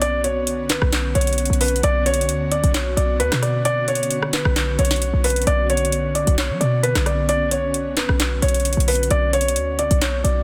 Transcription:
0.00 0.78 B1 loud
0.00 9.07 D3 medium
0.00 1.80 B3 medium
0.00 5.43 C#4 medium
0.00 9.07 F#4 medium
0.00 0.20 D5 loud
0.00 closed hi-hat medium
0.24 0.67 C#5 medium
0.24 closed hi-hat medium
0.47 closed hi-hat medium
0.69 1.12 B4 medium
0.69 snare loud
0.69 clap medium
0.69 closed hi-hat medium
0.82 1.14 B1 loud
0.82 cross-stick loud
0.92 snare loud
0.92 clap loud
0.92 closed hi-hat medium
1.15 1.49 B1 loud
1.15 1.58 C#5 medium
1.15 closed hi-hat medium
1.21 closed hi-hat medium
1.27 closed hi-hat medium
1.33 closed hi-hat soft
1.38 closed hi-hat medium
1.45 closed hi-hat medium
1.50 1.82 B1 loud
1.50 closed hi-hat medium
1.61 1.80 B4 medium
1.61 closed hi-hat medium
1.61 open hi-hat medium
1.68 closed hi-hat medium
1.76 closed hi-hat medium
1.83 2.30 B1 loud
1.83 10.43 B3 medium
1.83 2.02 D5 loud
1.83 closed hi-hat medium
2.06 2.49 C#5 loud
2.06 closed hi-hat medium
2.14 closed hi-hat medium
2.21 closed hi-hat medium
2.29 2.62 D2 loud
2.29 closed hi-hat medium
2.52 2.70 D5 medium
2.52 closed hi-hat medium
2.64 2.96 B1 loud
2.64 closed hi-hat medium
2.74 snare loud
2.74 clap loud
2.74 closed hi-hat medium
2.97 3.21 B1 loud
2.97 3.16 D5 medium
2.97 closed hi-hat medium
3.20 3.31 D2 loud
3.20 3.39 B4 loud
3.20 closed hi-hat medium
3.32 4.41 B2 loud
3.32 cross-stick loud
3.32 snare loud
3.32 clap medium
3.42 3.61 D5 medium
3.42 cross-stick medium
3.42 closed hi-hat medium
3.65 3.84 D5 loud
3.65 closed hi-hat medium
3.88 4.31 C#5 medium
3.88 closed hi-hat soft
3.95 closed hi-hat medium
4.03 closed hi-hat medium
4.11 closed hi-hat medium
4.23 cross-stick medium
4.33 4.76 B4 medium
4.33 snare loud
4.33 clap medium
4.33 closed hi-hat medium
4.45 4.77 B1 loud
4.45 cross-stick loud
4.56 snare loud
4.56 clap loud
4.56 closed hi-hat medium
4.79 5.12 B1 loud
4.79 5.22 C#5 medium
4.79 closed hi-hat medium
4.85 closed hi-hat medium
4.91 snare medium
4.91 closed hi-hat medium
4.96 closed hi-hat soft
5.02 closed hi-hat medium
5.13 5.46 B1 loud
5.24 5.43 B4 medium
5.24 closed hi-hat medium
5.24 open hi-hat medium
5.30 closed hi-hat medium
5.36 closed hi-hat medium
5.42 closed hi-hat soft
5.47 6.24 B1 loud
5.47 9.07 C#4 medium
5.47 5.66 D5 loud
5.47 closed hi-hat medium
5.70 6.12 C#5 medium
5.70 closed hi-hat medium
5.77 closed hi-hat medium
5.85 closed hi-hat medium
5.92 closed hi-hat medium
6.15 6.34 D5 medium
6.15 closed hi-hat medium
6.27 6.51 B1 loud
6.27 closed hi-hat medium
6.38 6.57 C#5 medium
6.38 snare loud
6.38 clap loud
6.38 closed hi-hat medium
6.50 6.60 F#3 loud
6.61 6.94 B2 loud
6.61 6.79 D5 medium
6.61 closed hi-hat medium
6.83 7.02 B4 loud
6.83 closed hi-hat medium
6.95 8.05 B1 loud
6.95 cross-stick loud
6.95 snare loud
6.95 clap medium
7.06 7.25 D5 medium
7.06 cross-stick medium
7.06 closed hi-hat medium
7.29 7.48 D5 loud
7.29 closed hi-hat medium
7.51 7.94 C#5 medium
7.51 closed hi-hat medium
7.74 closed hi-hat medium
7.97 8.40 B4 medium
7.97 snare loud
7.97 clap medium
7.97 closed hi-hat medium
8.09 8.41 B1 loud
8.09 cross-stick loud
8.20 snare loud
8.20 clap loud
8.20 closed hi-hat medium
8.42 8.76 B1 loud
8.42 8.85 C#5 medium
8.42 closed hi-hat medium
8.48 closed hi-hat medium
8.54 closed hi-hat medium
8.60 closed hi-hat soft
8.65 closed hi-hat medium
8.73 closed hi-hat medium
8.77 9.09 B1 loud
8.77 closed hi-hat medium
8.88 9.07 B4 medium
8.88 closed hi-hat medium
8.88 open hi-hat medium
8.95 closed hi-hat medium
9.03 closed hi-hat medium
9.11 9.58 B1 loud
9.11 10.43 D3 medium
9.11 10.43 C#4 medium
9.11 10.43 F#4 medium
9.11 9.30 D5 loud
9.11 closed hi-hat medium
9.33 9.76 C#5 loud
9.33 closed hi-hat medium
9.41 closed hi-hat medium
9.48 closed hi-hat medium
9.56 9.89 D2 loud
9.56 closed hi-hat medium
9.79 9.98 D5 medium
9.79 closed hi-hat medium
9.91 10.23 B1 loud
9.91 closed hi-hat medium
10.01 10.20 C#5 medium
10.01 snare loud
10.01 clap loud
10.01 closed hi-hat medium
10.24 10.43 B1 loud
10.24 10.43 D5 medium
10.24 closed hi-hat medium

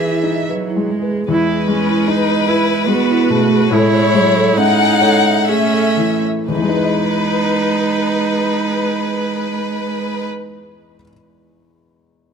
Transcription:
0.00 1.25 E2 medium
0.00 1.32 D#3 soft
0.00 0.52 E3 medium
0.00 0.91 G#4 medium
0.00 1.32 A4 soft
0.00 0.49 B4 soft
0.00 0.46 E5 medium
0.00 0.47 E5 medium
0.11 0.23 E4 medium
0.23 0.65 D#4 soft
0.32 0.43 D#5 soft
0.49 0.92 F#3 medium
0.49 0.92 B4 soft
0.49 0.63 D#5 soft
0.70 0.82 E4 medium
0.76 1.19 G#3 soft
0.91 1.29 G#3 medium
0.91 1.03 G#4 medium
1.02 1.29 B4 soft
1.11 1.23 G#4 medium
1.28 3.67 E2 medium
1.28 2.89 G#3 medium
1.28 1.42 E4 medium
1.28 1.67 E4 medium
1.28 3.68 B4 medium
1.68 2.32 G#3 medium
1.68 2.11 C#4 medium
1.90 2.01 E4 medium
2.08 2.73 D#4 medium
2.08 2.49 D#4 medium
2.08 2.22 B4 medium
2.30 2.42 D#5 medium
2.48 2.89 E4 medium
2.48 2.62 E4 medium
2.48 3.13 B4 medium
2.71 2.83 B4 medium
2.88 3.55 G#3 medium
2.88 3.31 B3 medium
2.88 3.74 F#4 medium
3.11 3.23 E4 medium
3.30 3.72 B2 medium
3.30 3.71 A3 medium
3.30 3.43 G#4 medium
3.52 3.64 G#4 medium
3.71 6.44 A2 medium
3.71 4.16 G#3 medium
3.71 4.58 E4 medium
3.71 3.86 A4 loud
3.71 4.57 C#5 medium
3.95 4.07 C#5 medium
4.14 4.56 F#3 medium
4.14 4.84 G#3 medium
4.37 4.50 A4 loud
4.55 5.50 G#3 medium
4.55 5.30 C#4 medium
4.55 5.51 D#4 loud
4.55 4.71 E5 medium
4.55 5.48 F#5 medium
4.81 4.94 G#5 medium
5.01 5.17 A4 loud
5.01 5.78 C#5 medium
5.26 5.40 E5 medium
5.48 6.22 A3 medium
5.48 6.23 C#4 medium
5.48 6.28 G#4 medium
5.48 6.23 E5 medium
5.74 5.89 A4 medium
5.97 6.48 E3 medium
5.97 6.14 C#5 medium
6.24 6.39 C#5 medium
6.47 10.93 E2 medium
6.47 10.23 G#3 medium
6.47 10.24 D#4 medium
6.47 10.24 B4 medium
6.55 10.97 E3 medium
6.62 11.00 G#3 medium
6.69 11.04 D#4 medium
6.76 11.07 B4 medium
6.83 11.11 D#5 medium

